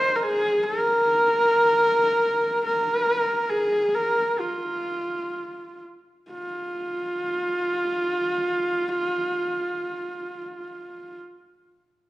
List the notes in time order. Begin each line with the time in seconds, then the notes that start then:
Already playing: C5
0.16 A#4
0.23 G#4
0.63 A#4
2.66 A#4
3.49 G#4
3.95 A#4
4.40 F4
6.31 F4